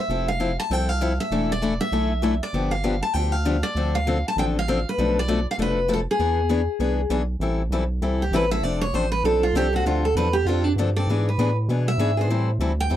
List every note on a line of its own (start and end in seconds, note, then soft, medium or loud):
0.00 0.26 E5 medium
0.09 0.58 F1 medium
0.09 0.29 F3 medium
0.09 0.29 C4 medium
0.09 0.29 E4 medium
0.09 0.29 A4 medium
0.28 0.56 F5 medium
0.40 0.50 F3 medium
0.40 0.50 C4 medium
0.40 0.51 E4 medium
0.40 0.51 A4 medium
0.60 0.73 A5 medium
0.70 1.19 C2 medium
0.70 0.90 F3 medium
0.70 0.90 C4 medium
0.70 0.90 E4 medium
0.70 0.91 A4 medium
0.70 0.89 G5 medium
0.89 1.19 F5 medium
1.01 1.11 F3 medium
1.01 1.12 C4 medium
1.01 1.12 E4 medium
1.01 1.12 A4 medium
1.20 1.51 E5 medium
1.31 1.80 E1 medium
1.31 1.51 E3 medium
1.31 1.51 A3 medium
1.31 1.51 D4 medium
1.31 1.51 E4 medium
1.31 1.51 A4 medium
1.52 1.82 D5 medium
1.62 1.72 E3 medium
1.62 1.73 A3 medium
1.62 1.73 D4 medium
1.62 1.73 E4 medium
1.62 1.73 A4 medium
1.81 2.37 E5 medium
1.92 2.41 B1 medium
1.92 2.12 E3 medium
1.92 2.12 A3 medium
1.92 2.12 D4 medium
1.92 2.12 E4 medium
1.92 2.12 A4 medium
2.22 2.33 E3 medium
2.22 2.33 A3 medium
2.22 2.34 D4 medium
2.22 2.34 E4 medium
2.22 2.34 A4 medium
2.43 2.70 D5 medium
2.53 3.02 G1 medium
2.53 2.73 D3 medium
2.53 2.73 F3 medium
2.53 2.73 B3 medium
2.53 2.73 D4 medium
2.53 2.74 G4 medium
2.71 3.02 F5 medium
2.84 2.94 D3 medium
2.84 2.94 F3 medium
2.84 2.95 B3 medium
2.84 2.94 D4 medium
2.84 2.95 G4 medium
3.03 3.14 A5 medium
3.14 3.63 D2 medium
3.14 3.34 D3 medium
3.14 3.34 F3 medium
3.14 3.34 B3 medium
3.14 3.34 D4 medium
3.14 3.35 G4 medium
3.14 3.32 G5 medium
3.32 3.64 F5 medium
3.45 3.56 D3 medium
3.45 3.56 F3 medium
3.45 3.56 B3 medium
3.45 3.56 D4 medium
3.45 3.56 G4 medium
3.63 3.94 D5 medium
3.75 4.24 D2 medium
3.75 3.95 D3 medium
3.75 3.95 F3 medium
3.75 3.96 C4 medium
3.75 3.96 D4 medium
3.75 3.96 A4 medium
3.95 4.26 F5 medium
4.07 4.17 D3 medium
4.07 4.17 F3 medium
4.07 4.17 C4 medium
4.07 4.17 D4 medium
4.07 4.18 A4 medium
4.28 4.38 A5 medium
4.36 4.85 A1 medium
4.36 4.57 D3 medium
4.36 4.57 F3 medium
4.36 4.57 C4 medium
4.36 4.57 D4 medium
4.36 4.57 A4 medium
4.36 4.44 G5 medium
4.59 4.88 F5 medium
4.68 4.78 D3 medium
4.68 4.78 F3 medium
4.68 4.79 C4 medium
4.68 4.79 D4 loud
4.68 4.78 A4 medium
4.89 5.18 B4 medium
4.98 5.47 B1 medium
4.98 5.17 B2 medium
4.98 5.18 F3 medium
4.98 5.18 A3 medium
4.98 5.18 D4 medium
4.98 5.18 A4 medium
5.19 5.46 D5 medium
5.28 5.39 B2 medium
5.28 5.39 F3 medium
5.28 5.39 A3 medium
5.28 5.39 D4 medium
5.28 5.39 A4 loud
5.51 5.55 F5 medium
5.58 6.07 F1 medium
5.58 5.78 B2 medium
5.58 5.78 F3 medium
5.58 5.78 A3 medium
5.58 5.78 D4 medium
5.58 5.79 A4 medium
5.58 5.92 B4 medium
5.88 5.99 B2 medium
5.88 6.00 F3 medium
5.88 6.00 A3 medium
5.88 6.00 D4 medium
5.88 6.00 A4 medium
5.94 5.99 A4 medium
6.11 7.13 G#4 medium
6.19 6.68 E2 medium
6.19 6.39 E3 medium
6.19 6.39 B3 medium
6.19 6.39 D4 medium
6.19 6.40 G#4 medium
6.49 6.60 E3 medium
6.49 6.60 B3 medium
6.49 6.61 D4 medium
6.49 6.61 G#4 medium
6.79 7.06 C2 medium
6.79 7.00 E3 medium
6.79 7.00 B3 medium
6.79 7.00 D4 medium
6.79 7.00 G#4 medium
7.10 7.36 B1 medium
7.10 7.21 E3 medium
7.10 7.21 B3 medium
7.10 7.22 D4 medium
7.10 7.22 G#4 loud
7.39 7.69 A1 medium
7.39 7.61 E3 medium
7.39 7.61 G3 medium
7.39 7.61 C4 medium
7.39 7.62 E4 medium
7.39 7.62 A4 medium
7.70 8.01 B1 medium
7.70 7.83 E3 medium
7.70 7.83 G3 medium
7.70 7.83 C4 medium
7.70 7.83 E4 medium
7.70 7.83 A4 medium
8.01 8.31 C2 medium
8.01 8.22 E3 medium
8.01 8.22 G3 medium
8.01 8.22 C4 medium
8.01 8.22 E4 medium
8.01 8.22 A4 medium
8.22 8.34 G4 medium
8.31 8.62 A1 medium
8.31 8.44 E3 medium
8.31 8.44 G3 medium
8.31 8.44 C4 medium
8.31 8.44 E4 medium
8.31 8.44 A4 loud
8.36 8.51 B4 medium
8.51 8.63 C4 soft
8.51 8.64 E4 medium
8.51 8.63 A4 medium
8.51 8.63 E5 loud
8.62 8.93 F1 medium
8.62 8.83 F3 medium
8.62 8.84 C4 medium
8.62 8.84 D4 medium
8.62 8.84 A4 medium
8.62 8.81 D5 medium
8.81 8.95 C#5 medium
8.93 9.23 A1 medium
8.93 9.05 F3 medium
8.93 9.05 C4 medium
8.93 9.05 D4 medium
8.93 9.05 A4 medium
8.93 9.11 C5 medium
9.12 9.24 B4 medium
9.23 9.53 B1 medium
9.23 9.44 F3 medium
9.23 9.44 C4 medium
9.23 9.45 D4 medium
9.23 9.43 A4 medium
9.23 9.45 A4 medium
9.43 9.55 F4 medium
9.54 9.84 C2 medium
9.54 9.66 F3 medium
9.54 9.66 C4 loud
9.54 9.66 D4 medium
9.54 9.74 G4 loud
9.54 9.66 A4 medium
9.73 9.85 C4 soft
9.73 9.85 D4 soft
9.73 9.86 F#4 medium
9.73 9.85 A4 medium
9.86 10.14 D2 medium
9.86 10.05 D3 medium
9.86 10.06 F3 medium
9.86 10.06 C4 medium
9.86 10.06 D4 medium
9.86 10.04 F4 medium
9.86 10.06 A4 medium
10.05 10.16 A4 medium
10.15 10.45 E2 medium
10.15 10.27 D3 medium
10.15 10.27 F3 medium
10.15 10.28 C4 medium
10.15 10.28 D4 medium
10.15 10.28 A4 medium
10.15 10.34 B4 medium
10.33 10.46 G4 medium
10.45 10.75 F2 medium
10.45 10.67 D3 medium
10.45 10.67 F3 medium
10.45 10.67 C4 medium
10.45 10.67 D4 medium
10.45 10.64 F4 medium
10.45 10.67 A4 medium
10.64 10.72 D4 medium
10.76 11.06 G2 medium
10.76 10.88 D3 medium
10.76 10.89 F3 medium
10.76 10.89 C4 medium
10.76 10.89 D4 medium
10.76 10.89 A4 medium
10.96 11.09 C4 soft
10.96 11.09 D4 medium
10.96 11.08 A4 medium
10.96 11.24 D5 medium
11.07 11.37 G#2 medium
11.07 11.28 E3 medium
11.07 11.28 B3 medium
11.07 11.28 D4 medium
11.07 11.29 G#4 medium
11.29 11.56 B4 medium
11.38 11.68 A2 medium
11.38 11.49 E3 medium
11.38 11.49 B3 medium
11.38 11.50 D4 medium
11.38 11.50 G#4 medium
11.68 11.97 B2 medium
11.68 11.89 E3 medium
11.68 11.89 B3 medium
11.68 11.89 D4 medium
11.68 11.89 G#4 medium
11.88 12.16 E5 medium
11.98 12.27 G#2 medium
11.98 12.10 E3 medium
11.98 12.10 B3 medium
11.98 12.10 D4 medium
11.98 12.10 G#4 loud
12.17 12.30 B3 medium
12.17 12.30 D4 soft
12.17 12.29 G#4 medium
12.17 12.48 C5 medium
12.28 12.58 A2 medium
12.28 12.50 E3 medium
12.28 12.50 G3 medium
12.28 12.50 C4 medium
12.28 12.50 E4 medium
12.28 12.50 A4 medium
12.59 12.89 D2 medium
12.59 12.71 E3 medium
12.59 12.71 G3 medium
12.59 12.71 C4 medium
12.59 12.71 E4 medium
12.59 12.71 A4 medium
12.80 12.96 G5 loud
12.90 12.96 E2 medium
12.90 12.96 E3 medium
12.90 12.96 G3 medium
12.90 12.96 C4 medium
12.90 12.96 E4 medium
12.90 12.96 A4 medium